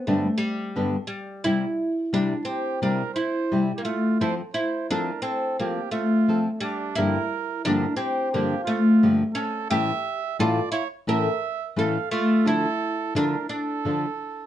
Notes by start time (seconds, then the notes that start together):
0.07 G2 D3 G3 A3 B3 D4 G4
0.38 G3
0.76 G2 D3 G3 B3 D4 G4
1.07 G3
1.44 C3 G3 C4 E4 G4
2.13 C3 G3 C4 D4 E4 G4
2.45 C4 G4
2.82 C3 G3 C4 D4 E4 G4 A#4
3.15 E4 C5
3.52 C3 G3 C4 E4 G4
3.76 A#3 G4
3.84 A3 F4
4.20 F3 C4 E4 F4 A4 C5
4.54 E4 C5
4.90 F3 C4 D4 F4 A4 A#4
5.22 C4 A4
5.59 F3 A#3 C4 F4 G4 A4
5.91 A3 F4
6.28 F3 C4 F4 A4
6.61 G3 D4
6.95 G2 D3 F3 A#3 D4 E4 G4 A#4
7.65 G2 D3 F3 A#3 D4 G4 A#4
7.97 C4 G4
8.32 G2 D3 F3 A#3 D4 G4
8.64 A3 F4
9.03 G2 D3 F3 A#3 D4 G4
9.33 C#4 A4
9.70 A2 E3 A3 C#4 E4 G4 A4 E5
10.39 A2 E3 A3 C#4 E4 F4 A4 D5
10.72 E4 C#5
11.07 A2 E3 A3 C#4 E4 A4 A#4 E5
11.76 A2 E3 A3 C#4 E4 A4 F5
12.11 A3 F4
12.45 D3 F3 D4 E4 F4 A4
13.15 D3 F3 D4 F4 A4 A#4
13.49 D4 A4
13.85 D3 F3 D4 F4 A4